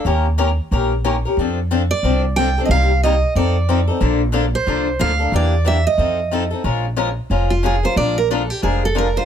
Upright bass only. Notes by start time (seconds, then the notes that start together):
0.05 D#2
0.71 A#1
1.37 F2
2.03 C2
2.69 C2
3.35 F2
4.01 A#1
4.67 C2
4.99 D2
5.32 E2
5.98 F2
6.64 A#1
7.30 F1
7.96 A#1
8.63 F1